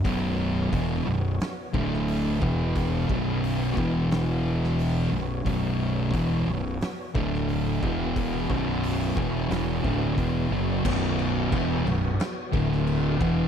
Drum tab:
CC |----------------|----------------|----------------|----------------|
HH |o---o---o---o---|o---o---o---o---|o---o---o---o---|o---o---o---o---|
SD |--------o--o----|--------o--o----|--------o--o----|--------o-------|
BD |o---o-----o---o-|o-o---o---------|o---o-----o---o-|o-o---o---o-o---|

CC |x-x-x-x-x-x-x-x-|
HH |----------------|
SD |--------o--o----|
BD |o---o-----o---o-|